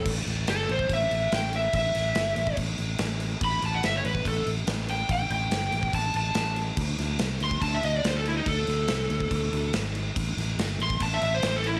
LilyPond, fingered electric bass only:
\new Staff \with { instrumentName = "Fingered electric bass" } { \clef bass \time 4/4 \key d \major \tempo 4 = 142 a,,8 a,,8 g,,8 a,,8 a,,8 a,,8 a,,4 | a,,8 a,,8 g,,8 a,,8 a,,8 a,,8 a,,4 | a,,8 a,,8 g,,8 a,,8 a,,8 a,,8 a,,4 | a,,8 a,,8 g,,8 a,,8 a,,8 a,,8 a,,4 |
d,8 d,8 c,8 d,8 d,8 d,8 d,4 | d,8 d,8 c,8 d,8 d,8 d,8 gis,,4 | a,,8 a,,8 g,,8 a,,8 a,,8 a,,8 a,,4 | }